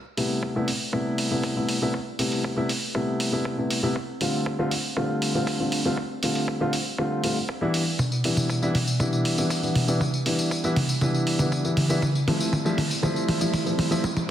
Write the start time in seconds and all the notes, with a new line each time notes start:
0.17 C3 G3 A3 B3 E4, open hi-hat
0.43 kick
0.55 C3 G3 A3 B3 E4
0.68 open hi-hat
0.92 C3 G3 A3 B3 E4, kick
1.18 open hi-hat
1.31 C3 G3 A3 B3 E4
1.43 kick, open hi-hat
1.56 C3 G3 A3 B3 E4
1.69 open hi-hat
1.81 C3 G3 A3 B3 E4
1.94 kick
2.19 C3 G3 A3 B3 E4, open hi-hat
2.32 open hi-hat
2.44 kick
2.56 C3 G3 A3 B3 E4
2.69 open hi-hat
2.94 C3 G3 A3 B3 E4, kick
3.20 open hi-hat
3.32 C3 G3 A3 B3 E4
3.45 kick
3.58 C3 G3 A3 B3 E4
3.70 open hi-hat
3.83 C3 G3 A3 B3 E4
3.96 kick
4.21 D3 G3 A3 C4 F4, open hi-hat
4.46 kick
4.59 D3 G3 A3 C4 F4
4.71 open hi-hat
4.96 D3 G3 A3 C4 F4, kick
5.22 open hi-hat
5.34 D3 G3 A3 C4 F4
5.47 kick, open hi-hat
5.59 D3 G3 A3 C4 F4
5.72 open hi-hat
5.85 D3 G3 A3 C4 F4
5.97 kick
6.23 D3 G3 A3 C4 F4, open hi-hat
6.35 open hi-hat
6.48 kick
6.60 D3 G3 A3 C4 F4
6.73 open hi-hat
6.98 D3 G3 A3 C4 F4, kick
7.23 D3 G3 A3 C4 F4, open hi-hat
7.49 kick
7.61 E3 G3 B3 D4 E4
7.74 open hi-hat
7.99 kick, mid tom, tambourine
8.12 tambourine
8.24 E3 G3 B3 D4 E4, open hi-hat
8.37 mid tom, tambourine
8.50 kick, tambourine
8.62 E3 G3 B3 D4 E4, tambourine
8.75 open hi-hat, mid tom
8.88 tambourine
8.99 E3 G3 B3 D4 E4, kick, mid tom, tambourine
9.13 tambourine
9.25 open hi-hat
9.37 E3 G3 B3 D4 E4, tambourine
9.50 kick, open hi-hat, tambourine
9.63 E3 G3 B3 D4 E4, tambourine
9.75 open hi-hat, mid tom
9.88 E3 G3 B3 D4 E4, tambourine
10.01 kick, mid tom, tambourine
10.14 tambourine
10.26 E3 G3 B3 D4 E4, open hi-hat
10.39 open hi-hat, tambourine
10.51 kick, tambourine
10.64 E3 G3 B3 D4 E4, tambourine
10.76 open hi-hat, mid tom
10.89 tambourine
11.01 E3 G3 B3 D4 E4, kick, mid tom, tambourine
11.14 tambourine
11.27 open hi-hat
11.39 E3 G3 B3 D4 E4, mid tom, tambourine
11.52 kick, tambourine
11.64 E3 G3 B3 D4 E4, tambourine
11.77 open hi-hat, mid tom
11.89 E3 G3 B3 D4 E4, tambourine
12.02 kick, mid tom, tambourine
12.15 tambourine
12.27 F3 G3 A3 C4 E4, open hi-hat, mid tom
12.40 tambourine
12.53 kick, mid tom, tambourine
12.65 F3 G3 A3 C4 E4, tambourine
12.78 open hi-hat, mid tom
12.91 tambourine
13.03 F3 G3 A3 C4 E4, kick, mid tom, tambourine
13.16 tambourine
13.29 open hi-hat, mid tom
13.41 F3 G3 A3 C4 E4, tambourine
13.54 kick, open hi-hat, mid tom, tambourine
13.66 F3 G3 A3 C4 E4, tambourine
13.79 open hi-hat, mid tom
13.91 F3 G3 A3 C4 E4, tambourine
14.04 kick, mid tom, tambourine
14.17 mid tom, tambourine